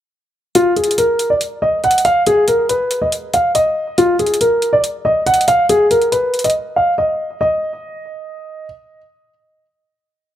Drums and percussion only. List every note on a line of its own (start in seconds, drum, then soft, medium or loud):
0.55 closed hi-hat medium
0.76 closed hi-hat soft
0.84 closed hi-hat medium
0.91 closed hi-hat medium
0.98 closed hi-hat medium
1.19 closed hi-hat medium
1.41 closed hi-hat medium
1.84 closed hi-hat soft
1.91 closed hi-hat medium
1.98 closed hi-hat medium
2.05 closed hi-hat medium
2.26 closed hi-hat medium
2.48 closed hi-hat medium
2.69 closed hi-hat medium
2.91 closed hi-hat medium
3.12 closed hi-hat medium
3.34 closed hi-hat medium
3.55 closed hi-hat medium
3.98 closed hi-hat medium
4.19 closed hi-hat soft
4.26 closed hi-hat medium
4.34 closed hi-hat medium
4.41 closed hi-hat medium
4.62 closed hi-hat medium
4.84 closed hi-hat medium
5.27 closed hi-hat soft
5.34 closed hi-hat medium
5.41 closed hi-hat medium
5.48 closed hi-hat medium
5.69 closed hi-hat medium
5.91 closed hi-hat medium
6.02 closed hi-hat soft
6.12 closed hi-hat medium
6.34 closed hi-hat soft
6.39 closed hi-hat medium
6.44 closed hi-hat medium
6.50 closed hi-hat medium